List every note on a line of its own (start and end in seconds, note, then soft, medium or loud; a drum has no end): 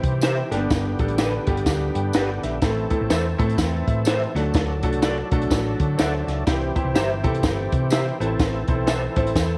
0.00 0.41 C3 medium
0.00 0.50 E3 medium
0.00 0.23 G3 loud
0.00 0.23 C4 medium
0.00 0.50 C4 medium
0.00 0.23 E4 medium
0.00 0.26 G4 loud
0.00 0.50 G4 medium
0.00 kick loud
0.00 closed hi-hat medium
0.21 0.35 G4 medium
0.21 0.36 C5 loud
0.21 0.36 E5 loud
0.21 snare loud
0.21 closed hi-hat medium
0.21 tambourine medium
0.51 0.66 G1 medium
0.51 2.61 D3 medium
0.51 0.88 G3 medium
0.51 0.56 A#3 medium
0.51 2.61 B3 medium
0.51 0.88 D4 medium
0.51 2.61 G4 medium
0.51 0.88 G4 loud
0.51 snare soft
0.51 closed hi-hat medium
0.57 0.91 B3 medium
0.70 0.93 G1 loud
0.70 kick loud
0.70 snare loud
0.70 closed hi-hat medium
0.70 tambourine medium
0.99 1.37 A1 medium
0.99 1.33 G3 medium
0.99 1.33 B3 medium
0.99 1.33 D4 medium
0.99 1.33 A4 medium
0.99 kick loud
0.99 closed hi-hat medium
1.08 closed hi-hat soft
1.18 1.31 D4 medium
1.18 1.32 G4 medium
1.18 1.32 B4 medium
1.18 snare loud
1.18 closed hi-hat loud
1.18 tambourine medium
1.47 1.63 G1 medium
1.47 2.15 G3 medium
1.47 2.15 B3 medium
1.47 2.15 D4 medium
1.47 2.15 G4 loud
1.47 kick loud
1.47 closed hi-hat medium
1.57 closed hi-hat soft
1.66 1.89 D2 medium
1.66 kick medium
1.66 snare loud
1.66 closed hi-hat medium
1.66 tambourine medium
1.95 2.10 G2 loud
1.95 2.13 G5 medium
1.95 closed hi-hat medium
2.13 2.37 G1 medium
2.13 2.27 D4 medium
2.13 2.28 G4 medium
2.13 2.28 B4 loud
2.13 2.41 F#5 medium
2.13 snare loud
2.13 closed hi-hat loud
2.13 tambourine loud
2.43 2.59 A#1 medium
2.43 2.61 E5 medium
2.43 snare soft
2.43 closed hi-hat medium
2.62 2.85 A1 medium
2.62 4.34 E3 medium
2.62 2.84 A3 medium
2.62 4.34 C4 medium
2.62 2.84 C4 medium
2.62 2.84 E4 medium
2.62 2.84 A4 medium
2.62 6.43 A4 medium
2.62 kick loud
2.62 snare loud
2.62 closed hi-hat loud
2.62 tambourine medium
2.90 3.24 A3 medium
2.90 2.96 B3 medium
2.90 3.24 E4 medium
2.90 3.25 A4 medium
2.90 kick medium
2.90 closed hi-hat medium
2.96 3.27 C4 medium
3.01 3.09 A1 medium
3.10 3.33 E2 loud
3.10 3.23 A4 medium
3.10 3.23 C5 medium
3.10 3.24 E5 medium
3.10 snare loud
3.10 closed hi-hat loud
3.10 tambourine medium
3.38 3.55 A2 medium
3.38 4.06 A3 loud
3.38 3.44 B3 medium
3.38 4.06 E4 medium
3.38 3.87 A4 loud
3.38 kick loud
3.38 closed hi-hat medium
3.44 4.09 C4 medium
3.50 closed hi-hat medium
3.58 3.81 E2 medium
3.58 kick medium
3.58 snare loud
3.58 closed hi-hat loud
3.58 tambourine medium
3.87 4.26 A2 medium
3.87 4.06 E5 medium
3.87 kick loud
3.87 closed hi-hat medium
4.05 4.19 A4 medium
4.05 4.34 A4 medium
4.05 4.20 C5 loud
4.05 4.20 E5 medium
4.05 snare loud
4.05 closed hi-hat loud
4.05 tambourine loud
4.35 4.50 D2 loud
4.35 6.45 F#3 medium
4.35 4.72 A3 medium
4.35 4.72 D4 medium
4.35 6.45 D4 medium
4.35 4.72 F#4 medium
4.35 4.72 A4 loud
4.35 snare soft
4.35 closed hi-hat medium
4.54 4.83 D2 loud
4.54 kick loud
4.54 snare loud
4.54 closed hi-hat medium
4.54 tambourine medium
4.83 5.21 C2 medium
4.83 5.17 A3 medium
4.83 5.17 D4 medium
4.83 5.17 F#4 medium
4.83 5.17 A4 loud
4.83 kick medium
4.83 closed hi-hat medium
4.93 closed hi-hat soft
5.02 5.15 A4 medium
5.02 5.16 D5 medium
5.02 5.16 F#5 medium
5.02 snare loud
5.02 closed hi-hat loud
5.02 tambourine medium
5.32 5.47 B1 medium
5.32 5.99 A3 medium
5.32 5.99 D4 medium
5.32 5.99 F#4 medium
5.32 5.99 A4 loud
5.32 kick loud
5.32 closed hi-hat medium
5.42 closed hi-hat medium
5.50 5.73 A1 loud
5.50 kick loud
5.50 snare loud
5.50 closed hi-hat medium
5.50 tambourine medium
5.80 5.95 D3 loud
5.80 kick loud
5.80 closed hi-hat medium
5.98 6.22 D2 medium
5.98 6.11 A4 medium
5.98 6.27 C5 medium
5.98 6.12 D5 medium
5.98 6.44 E5 medium
5.98 6.12 F#5 loud
5.98 snare loud
5.98 closed hi-hat loud
5.98 tambourine loud
6.27 6.43 C#2 medium
6.27 6.74 D5 medium
6.27 snare soft
6.27 closed hi-hat medium
6.46 6.70 C2 loud
6.46 8.19 E3 medium
6.46 6.68 C4 medium
6.46 8.19 C4 medium
6.46 6.69 E4 medium
6.46 6.69 G4 medium
6.46 8.19 G4 medium
6.46 6.69 C5 medium
6.46 kick loud
6.46 snare loud
6.46 closed hi-hat medium
6.46 tambourine medium
6.75 7.09 C4 medium
6.75 7.09 E4 medium
6.75 7.09 G4 medium
6.75 7.10 C5 loud
6.75 kick medium
6.75 closed hi-hat medium
6.85 6.93 C2 loud
6.94 7.26 G1 loud
6.94 7.08 G4 medium
6.94 7.08 C5 medium
6.94 7.09 E5 loud
6.94 snare loud
6.94 closed hi-hat loud
6.94 tambourine medium
7.24 7.40 C3 loud
7.24 7.91 C4 loud
7.24 7.91 E4 medium
7.24 7.91 G4 medium
7.24 7.91 A4 loud
7.24 kick loud
7.24 closed hi-hat medium
7.35 closed hi-hat medium
7.43 7.66 G1 loud
7.43 kick medium
7.43 snare loud
7.43 closed hi-hat medium
7.43 tambourine medium
7.72 8.10 C3 medium
7.72 kick loud
7.72 closed hi-hat medium
7.90 8.04 G4 medium
7.90 8.04 C5 medium
7.90 8.05 E5 medium
7.90 snare loud
7.90 closed hi-hat loud
7.90 tambourine medium
8.20 8.36 A1 loud
8.20 9.58 E3 medium
8.20 8.57 C4 medium
8.20 9.58 C4 medium
8.20 8.57 E4 medium
8.20 9.58 A4 medium
8.20 8.57 A4 medium
8.20 8.25 B4 medium
8.20 closed hi-hat medium
8.26 8.60 C5 loud
8.39 8.62 A1 loud
8.39 kick loud
8.39 snare loud
8.39 closed hi-hat medium
8.39 tambourine medium
8.68 9.07 B1 medium
8.68 9.02 C4 medium
8.68 9.02 E4 medium
8.68 9.02 A4 medium
8.68 9.02 C5 loud
8.68 kick loud
8.68 closed hi-hat medium
8.87 9.00 A4 medium
8.87 9.01 C5 medium
8.87 9.01 E5 loud
8.87 snare loud
8.87 closed hi-hat loud
8.87 tambourine medium
9.16 9.32 A1 medium
9.16 9.58 C4 medium
9.16 9.58 E4 medium
9.16 9.58 A4 medium
9.16 9.58 C5 loud
9.16 kick loud
9.16 closed hi-hat medium
9.27 closed hi-hat medium
9.36 9.58 E2 loud
9.36 kick medium
9.36 snare medium
9.36 closed hi-hat loud
9.36 tambourine medium